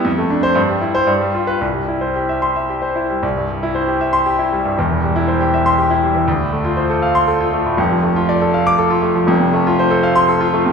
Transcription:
\new Staff \with { instrumentName = "Grand piano" } { \time 3/4 \key c \major \tempo 4 = 118 << { r8. c''16 r8. c''16 r8. b'16 | r4. c'''8 r4 | r4. r16 c'''8 r8. | r4. r16 c'''8 r8. |
r4. r16 c'''8 r8. | r4. r16 d'''8 r8. | \key f \lydian r4. r16 c'''8 r8. | } \\ { f,16 a16 d'8 g,16 g16 e'8 g,16 g16 f'8 | c,16 g16 e'16 c''16 g'16 e''8 e''16 g'16 c''16 e'16 g16 | c,16 g,16 g16 e'16 c''16 g'16 e''8 g'16 e'16 g16 g,16 | <e,, e,>16 e16 g16 e'16 c''16 g'16 e''8 g'16 e'16 g16 e16 |
d,16 a,16 a16 f'16 c''16 a'16 f''8 a'16 f'16 a16 a,16 | <f,, f,>16 f16 a16 f'16 d''16 a'16 f''8 a'16 f'16 a16 f16 | <f,, f,>16 c16 a16 f'16 c''16 a'16 f''8 a'16 f'16 a16 c16 | } >> }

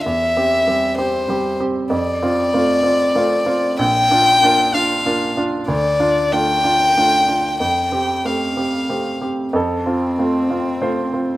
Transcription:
<<
  \new Staff \with { instrumentName = "Violin" } { \time 3/4 \key f \major \tempo 4 = 95 e''4. c''4 r8 | d''2. | g''4. f''4 r8 | d''4 g''2 |
g''4 f''4. r8 | c'2. | }
  \new Staff \with { instrumentName = "Upright piano" } { \time 3/4 \key f \major << { r2. | r2. | r2. | r2. |
r2. | a'2 c''4 | } \\ { e,8 <c' g'>8 <g c' g'>8 <c' g'>8 <g c' g'>8 <c' g'>8 | f,8 <c' f'>8 <a c' f'>8 <c' f'>8 <a c' f'>8 <c' f'>8 | bes,,8 <d' f'>8 <bes d' f'>8 <d' f'>8 <bes d' f'>8 <d' f'>8 | d,8 <d' f'>8 <a d' f'>8 <d' f'>8 <a d' f'>8 <d' f'>8 |
f,8 <c' g'>8 <a c' g'>8 <c' g'>8 <a c' g'>8 <c' g'>8 | f,8 <c' f'>8 <a c' f'>8 <c' f'>8 <a c' f'>8 <c' f'>8 | } >> }
>>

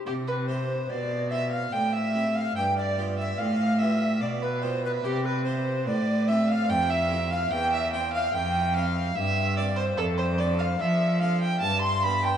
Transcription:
<<
  \new Staff \with { instrumentName = "Recorder" } { \time 3/4 \key c \major \tempo 4 = 73 g'16 b'16 c''8 d''8 e''16 f''16 g''16 e''8 f''16 | g''16 d''8 e''16 f''8 e''8 d''16 b'16 c''16 b'16 | g'16 b'16 c''8 d''8 e''16 f''16 g''16 e''8 f''16 | g''16 e''16 g''16 f''16 g''8 f''8 e''8 d''16 c''16 |
a'16 c''16 d''16 f''16 e''8 f''16 g''16 a''16 c'''16 b''16 g''16 | }
  \new Staff \with { instrumentName = "Violin" } { \time 3/4 \key c \major g'16 b'16 c''8 d''8 e''16 f''16 g''16 e''8 f''16 | g''16 d''8 e''16 f''8 e''8 d''16 b'16 c''16 b'16 | g'16 b'16 c''8 d''8 e''16 f''16 g''16 e''8 f''16 | g''16 e''16 g''16 f''16 g''8 f''8 e''8 d''16 c''16 |
a'16 c''16 d''16 f''16 e''8 f''16 g''16 a''16 c'''16 b''16 g''16 | }
  \new Staff \with { instrumentName = "Harpsichord" } { \time 3/4 \key c \major r8 <c' e' g'>4 <c' e' g'>4 <c' e' g'>8 | r8 <b f' g'>4 <b f' g'>4 <b f' g'>8 | r8 <c' e' g'>4 <c' e' g'>4 <c' e' g'>8 | r8 <c' e' c''>4 <c' e' c''>4 <c' e' c''>8 |
r8 <c' d' a'>4 <c' d' a'>8 r8 <b d' g'>8 | }
  \new Staff \with { instrumentName = "Harpsichord" } { \clef bass \time 3/4 \key c \major c4 b,4 a,4 | g,4 a,4 b,4 | c4 a,4 f,4 | e,4 f,4 g,4 |
f,4 f4 g,4 | }
  \new Staff \with { instrumentName = "Cello" } { \clef bass \time 3/4 \key c \major c4 b,4 a,4 | g,4 a,4 b,4 | c4 a,4 f,4 | e,4 f,4 g,4 |
f,4 f4 g,4 | }
>>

